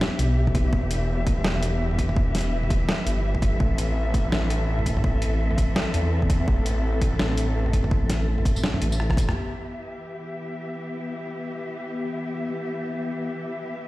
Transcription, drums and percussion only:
0.01 snare loud
0.19 closed hi-hat medium
0.47 kick medium
0.55 kick loud
0.55 closed hi-hat medium
0.73 kick loud
0.91 closed hi-hat medium
1.27 kick loud
1.27 closed hi-hat medium
1.44 snare loud
1.63 closed hi-hat medium
1.91 mid tom soft
1.99 kick medium
1.99 closed hi-hat medium
2.09 mid tom medium
2.16 kick loud
2.35 snare medium
2.35 closed hi-hat medium
2.38 closed hi-hat medium
2.41 closed hi-hat soft
2.63 mid tom soft
2.70 kick loud
2.70 closed hi-hat medium
2.89 snare loud
3.07 closed hi-hat medium
3.35 kick medium
3.42 kick loud
3.42 closed hi-hat medium
3.60 kick loud
3.78 closed hi-hat medium
4.14 kick loud
4.14 closed hi-hat medium
4.32 snare loud
4.50 closed hi-hat medium
4.79 mid tom soft
4.86 kick medium
4.86 closed hi-hat medium
4.97 mid tom medium
5.04 kick loud
5.22 closed hi-hat medium
5.51 mid tom soft
5.58 kick loud
5.58 closed hi-hat medium
5.76 snare loud
5.94 closed hi-hat medium
6.22 kick medium
6.30 kick loud
6.30 closed hi-hat medium
6.48 kick loud
6.66 closed hi-hat medium
7.01 kick loud
7.01 closed hi-hat medium
7.19 snare loud
7.37 closed hi-hat medium
7.66 mid tom soft
7.73 kick medium
7.73 closed hi-hat medium
7.84 mid tom medium
7.91 kick loud
8.10 snare medium
8.10 closed hi-hat medium
8.38 mid tom soft
8.45 kick loud
8.45 closed hi-hat medium
8.56 tambourine soft
8.64 snare loud
8.74 mid tom medium
8.82 closed hi-hat medium
8.92 tambourine soft
9.00 cross-stick medium
9.10 kick medium
9.10 cross-stick medium
9.17 kick loud
9.17 closed hi-hat medium
9.17 tambourine soft
9.29 cross-stick medium
9.29 mid tom medium

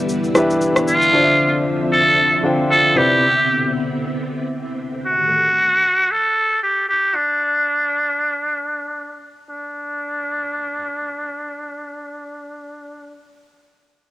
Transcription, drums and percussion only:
0.09 shaker medium
0.24 shaker soft
0.35 cross-stick medium
0.35 shaker medium
0.50 shaker medium
0.61 shaker medium
0.76 cross-stick medium
0.76 shaker medium
0.88 shaker loud
1.02 shaker soft

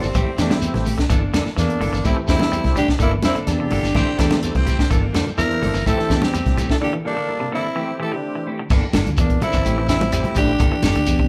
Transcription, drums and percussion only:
0.03 shekere medium
0.14 kick medium
0.14 closed hi-hat medium
0.14 high conga medium
0.14 shekere medium
0.38 snare medium
0.38 closed hi-hat soft
0.38 shekere medium
0.50 snare medium
0.50 high conga loud
0.50 shekere soft
0.62 closed hi-hat medium
0.62 shekere medium
0.74 snare soft
0.74 closed hi-hat soft
0.74 high conga medium
0.74 low conga medium
0.85 open hi-hat medium
0.85 high conga medium
0.85 low conga medium
0.85 shekere medium
0.98 kick medium
0.98 snare medium
0.98 closed hi-hat soft
0.98 shekere soft
1.09 kick loud
1.09 closed hi-hat medium
1.09 shekere medium
1.34 snare medium
1.34 closed hi-hat medium
1.34 high conga loud
1.34 shekere medium
1.46 snare soft
1.46 shekere soft
1.58 snare soft
1.58 closed hi-hat medium
1.58 shekere medium
1.70 closed hi-hat soft
1.81 open hi-hat medium
1.81 high conga medium
1.81 low conga medium
1.81 shekere soft
1.94 shekere medium
2.05 kick medium
2.05 closed hi-hat medium
2.05 high conga medium
2.05 shekere medium
2.28 kick medium
2.28 snare medium
2.28 closed hi-hat medium
2.28 shekere medium
2.39 snare medium
2.39 high conga loud
2.39 shekere soft
2.53 closed hi-hat medium
2.53 shekere medium
2.64 kick medium
2.64 snare soft
2.64 closed hi-hat soft
2.64 high conga medium
2.75 kick medium
2.75 closed hi-hat medium
2.75 high conga medium
2.75 low conga medium
2.75 shekere medium
2.88 kick medium
2.88 snare medium
2.88 shekere soft
3.00 kick medium
3.00 closed hi-hat medium
3.00 shekere medium
3.23 snare medium
3.23 closed hi-hat medium
3.23 high conga loud
3.23 shekere medium
3.36 closed hi-hat soft
3.36 shekere soft
3.47 snare soft
3.47 closed hi-hat medium
3.47 shekere medium
3.70 open hi-hat medium
3.70 high conga medium
3.70 low conga medium
3.70 shekere soft
3.83 snare soft
3.83 shekere medium
3.95 kick medium
3.95 closed hi-hat medium
3.95 high conga medium
3.95 shekere medium
4.19 kick medium
4.19 snare medium
4.19 closed hi-hat medium
4.19 shekere medium
4.31 snare medium
4.31 high conga loud
4.31 shekere soft
4.43 closed hi-hat medium
4.43 shekere medium
4.55 kick medium
4.55 closed hi-hat soft
4.55 high conga medium
4.67 kick medium
4.67 closed hi-hat medium
4.67 low conga medium
4.67 shekere medium
4.79 kick medium
4.79 snare medium
4.79 closed hi-hat soft
4.79 shekere soft
4.91 kick loud
4.91 closed hi-hat medium
4.91 shekere medium
5.14 snare medium
5.14 closed hi-hat medium
5.14 high conga medium
5.14 shekere loud
5.27 high conga medium
5.27 shekere soft
5.38 snare soft
5.38 closed hi-hat medium
5.38 shekere medium
5.51 closed hi-hat soft
5.63 open hi-hat medium
5.63 high conga medium
5.63 low conga medium
5.63 shekere soft
5.75 shekere medium
5.86 kick medium
5.86 closed hi-hat medium
5.86 shekere medium
5.99 snare soft
6.10 kick medium
6.10 snare medium
6.10 closed hi-hat soft
6.10 shekere medium
6.22 snare medium
6.22 high conga loud
6.22 shekere soft
6.34 closed hi-hat medium
6.34 shekere medium
6.46 kick medium
6.46 snare soft
6.46 closed hi-hat soft
6.46 high conga medium
6.46 low conga medium
6.57 kick medium
6.57 closed hi-hat medium
6.57 low conga medium
6.57 shekere medium
6.70 kick medium
6.70 snare medium
6.70 shekere soft
8.70 kick loud
8.70 snare soft
8.70 crash medium
8.70 shekere medium
8.93 snare medium
8.93 closed hi-hat medium
8.93 high conga loud
8.93 shekere medium
9.06 closed hi-hat soft
9.06 high conga medium
9.06 shekere soft
9.17 kick medium
9.17 closed hi-hat medium
9.17 shekere medium
9.30 kick medium
9.30 closed hi-hat soft
9.41 closed hi-hat medium
9.41 high conga medium
9.41 low conga medium
9.41 shekere soft
9.52 kick medium
9.52 closed hi-hat soft
9.52 shekere medium
9.65 closed hi-hat medium
9.65 shekere medium
9.88 snare medium
9.88 closed hi-hat medium
9.88 shekere medium
10.01 closed hi-hat soft
10.01 high conga loud
10.01 shekere soft
10.12 closed hi-hat medium
10.12 shekere medium
10.24 closed hi-hat soft
10.24 high conga medium
10.24 low conga medium
10.35 kick medium
10.35 closed hi-hat medium
10.35 low conga medium
10.35 shekere medium
10.47 shekere soft
10.59 kick loud
10.59 closed hi-hat medium
10.59 shekere medium
10.83 snare medium
10.83 closed hi-hat medium
10.83 high conga loud
10.83 shekere loud
10.94 closed hi-hat soft
10.94 shekere soft
11.06 kick medium
11.06 closed hi-hat medium
11.06 shekere medium
11.19 kick medium

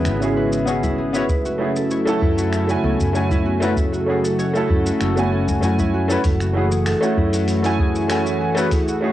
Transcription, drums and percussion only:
0.05 finger snap medium
0.05 shaker medium
0.22 shaker soft
0.53 shaker medium
0.67 shaker medium
0.83 kick medium
0.83 low conga medium
0.83 shaker soft
1.14 shaker medium
1.29 kick loud
1.29 shaker medium
1.45 shaker soft
1.76 shaker medium
1.91 shaker soft
2.07 shaker soft
2.22 kick loud
2.38 shaker medium
2.53 finger snap medium
2.53 shaker soft
2.69 shaker soft
2.84 high conga medium
3.00 kick medium
3.00 shaker medium
3.15 shaker medium
3.31 kick medium
3.31 low conga medium
3.31 shaker soft
3.46 high conga medium
3.63 shaker medium
3.77 kick loud
3.77 shaker medium
3.94 shaker soft
4.25 shaker medium
4.39 shaker soft
4.55 shaker soft
4.70 kick loud
4.86 shaker medium
5.00 finger snap medium
5.00 shaker medium
5.17 high conga medium
5.17 shaker soft
5.48 kick medium
5.48 low conga medium
5.48 shaker medium
5.63 shaker medium
5.78 kick medium
5.78 low conga medium
5.78 shaker soft
6.10 shaker medium
6.24 kick loud
6.24 open hi-hat medium
6.24 shaker medium
6.40 finger snap soft
6.40 shaker soft
6.72 shaker medium
6.86 finger snap loud
6.86 open hi-hat medium
6.86 shaker medium
7.03 shaker soft
7.17 kick medium
7.33 open hi-hat soft
7.33 shaker medium
7.48 open hi-hat medium
7.48 shaker medium
7.64 open hi-hat soft
7.64 shaker soft
7.79 kick loud
7.95 shaker medium
8.09 finger snap loud
8.09 open hi-hat medium
8.09 shaker medium
8.26 shaker soft
8.57 shaker medium
8.71 kick loud
8.71 open hi-hat medium
8.71 shaker medium
8.88 shaker soft

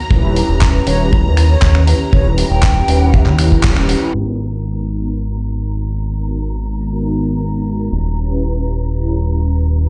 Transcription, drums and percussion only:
0.11 kick loud
0.36 open hi-hat medium
0.61 kick loud
0.61 clap loud
0.87 open hi-hat medium
1.13 kick loud
1.37 finger snap medium
1.37 open hi-hat loud
1.62 kick loud
1.62 clap loud
1.75 finger snap medium
1.87 open hi-hat loud
2.13 kick loud
2.38 open hi-hat loud
2.63 kick loud
2.63 clap loud
2.88 open hi-hat loud
3.14 kick loud
3.26 clap soft
3.39 finger snap medium
3.39 open hi-hat loud
3.52 kick medium
3.63 kick loud
3.63 clap loud
3.76 finger snap medium
3.89 open hi-hat loud

